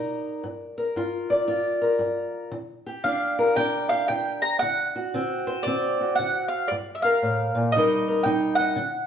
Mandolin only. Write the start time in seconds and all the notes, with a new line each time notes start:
3.04 F5
3.56 G5
3.89 F5
4.08 G5
4.42 A#5
4.59 F#5
5.63 D5
6.16 F#5
6.48 F5
6.68 D5
6.95 E5
7.02 F5
7.72 D#5
8.23 G5
8.55 F#5